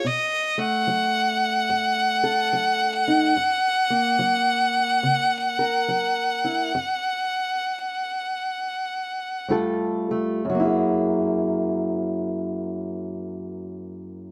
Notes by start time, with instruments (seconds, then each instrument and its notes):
0.04 steel-string acoustic guitar B2, fiddle D#5
0.58 steel-string acoustic guitar A3, fiddle F#5
0.87 steel-string acoustic guitar F#3
1.70 steel-string acoustic guitar F#2
2.24 steel-string acoustic guitar A4
2.53 steel-string acoustic guitar F#3
3.08 steel-string acoustic guitar D#4
3.36 steel-string acoustic guitar F#2
3.90 steel-string acoustic guitar A#3
4.19 steel-string acoustic guitar F#3
5.03 steel-string acoustic guitar C#3
5.59 steel-string acoustic guitar A#4
5.88 steel-string acoustic guitar F#3
6.44 steel-string acoustic guitar E4
6.75 steel-string acoustic guitar F#2
9.48 steel-string acoustic guitar G2 G3 A3 F4 A4
10.11 steel-string acoustic guitar A3
10.45 steel-string acoustic guitar F#2
10.50 steel-string acoustic guitar F#3
10.55 steel-string acoustic guitar A#3
10.60 steel-string acoustic guitar E4
10.65 steel-string acoustic guitar G#4